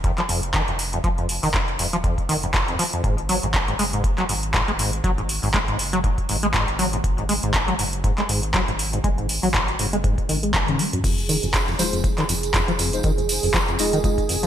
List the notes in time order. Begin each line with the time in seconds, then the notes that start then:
Already playing: D#1
0.04 F2, kick, closed hi-hat
0.18 F3, clap, closed hi-hat
0.29 F1 F2, open hi-hat
0.43 closed hi-hat
0.54 D#3, kick, clap, closed hi-hat
0.68 F1 F2, closed hi-hat
0.79 open hi-hat
0.93 F2, closed hi-hat
1.04 F1 F3, kick, closed hi-hat
1.18 F2, closed hi-hat
1.29 open hi-hat
1.43 F1 D#3, open hi-hat
1.54 F2, kick, clap, closed hi-hat
1.68 closed hi-hat
1.79 D#1 F2, open hi-hat
1.93 F3, closed hi-hat
2.04 F2, kick, closed hi-hat
2.18 kick, closed hi-hat
2.29 F1 D#3, open hi-hat
2.43 F2, closed hi-hat
2.54 kick, clap, closed hi-hat
2.68 F2, closed hi-hat
2.79 F3, open hi-hat
2.93 F2, closed hi-hat
3.04 G#1 G#2, kick, closed hi-hat
3.18 closed hi-hat
3.29 F#3, open hi-hat
3.43 G#1 G#2, closed hi-hat
3.54 kick, clap, closed hi-hat
3.68 G#2, closed hi-hat
3.79 F#1 G#3, open hi-hat
3.93 G#2, closed hi-hat
4.04 kick, closed hi-hat
4.18 F#3, clap, closed hi-hat
4.29 G#1 G#2, open hi-hat
4.43 closed hi-hat
4.54 G#2, kick, clap, closed hi-hat
4.68 G#1 G#3, closed hi-hat
4.79 G#2, open hi-hat
4.93 closed hi-hat
5.04 G#1 F#3, kick, closed hi-hat
5.18 G#2, closed hi-hat
5.29 open hi-hat
5.43 G#1 G#2, open hi-hat
5.54 G#3, kick, clap, closed hi-hat
5.68 G#2, closed hi-hat
5.79 F#1, open hi-hat
5.93 F#3, closed hi-hat
6.04 G#2, kick, closed hi-hat
6.18 kick, closed hi-hat
6.29 G#1 G#2, open hi-hat
6.43 G#3, closed hi-hat
6.54 G#2, kick, clap, closed hi-hat
6.68 G#1, closed hi-hat
6.79 F#3, open hi-hat
6.93 G#2, closed hi-hat
7.04 G#1, kick, closed hi-hat
7.18 G#2, closed hi-hat
7.29 G#3, open hi-hat
7.43 G#1 G#2, closed hi-hat
7.54 kick, clap, closed hi-hat
7.68 F#3, closed hi-hat
7.79 F#1 G#2, open hi-hat
7.93 closed hi-hat
8.04 G#2, kick, closed hi-hat
8.18 G#3, clap, closed hi-hat
8.29 G#1 G#2, open hi-hat
8.43 closed hi-hat
8.54 F#3, kick, clap, closed hi-hat
8.68 G#1 G#2, closed hi-hat
8.79 open hi-hat
8.93 G#2, closed hi-hat
9.04 G#1 G#3, kick, closed hi-hat
9.18 G#2, closed hi-hat
9.29 open hi-hat
9.43 G#1 F#3, open hi-hat
9.54 G#2, kick, clap, closed hi-hat
9.68 closed hi-hat
9.79 F#1 G#2, open hi-hat
9.93 G#3, closed hi-hat
10.04 G#2, kick, closed hi-hat
10.18 kick, closed hi-hat
10.29 G#1 D#3, open hi-hat
10.43 G#3, closed hi-hat
10.54 kick, clap, closed hi-hat, high tom
10.68 G#2 C#3, closed hi-hat, high tom
10.79 G#3, open hi-hat
10.93 F#2, closed hi-hat, mid tom
11.04 F1 F2 G#4, kick, closed hi-hat, crash, tambourine
11.18 closed hi-hat, tambourine
11.29 D#3, open hi-hat, tambourine
11.43 F1 F2, closed hi-hat, tambourine
11.54 kick, clap, closed hi-hat, tambourine
11.68 F2, closed hi-hat, tambourine
11.79 D#1 F3 G#3 D#4 F4 C5, open hi-hat, tambourine
11.93 F2, closed hi-hat, tambourine
12.04 kick, closed hi-hat, tambourine
12.17 D#3, clap, closed hi-hat, tambourine
12.29 F1 F2, open hi-hat, tambourine
12.43 closed hi-hat, tambourine
12.54 F2, kick, clap, closed hi-hat, tambourine
12.68 F1 F3, closed hi-hat, tambourine
12.79 F2, open hi-hat, tambourine
12.93 G#3 D#4 F4 C5, closed hi-hat, tambourine
13.03 F1 D#3, kick, closed hi-hat, tambourine
13.18 F2, closed hi-hat, tambourine
13.29 open hi-hat, tambourine
13.43 F1 F2, open hi-hat, tambourine
13.54 F3, kick, clap, closed hi-hat, tambourine
13.68 F2, closed hi-hat, tambourine
13.79 D#1 G#3 D#4 F4 D#5, open hi-hat, tambourine
13.93 D#3, closed hi-hat, tambourine
14.04 F2 G#3 D#4 F4 D#5, kick, closed hi-hat, tambourine
14.18 kick, closed hi-hat, tambourine
14.29 F1 F2, open hi-hat, tambourine
14.43 F3, closed hi-hat, tambourine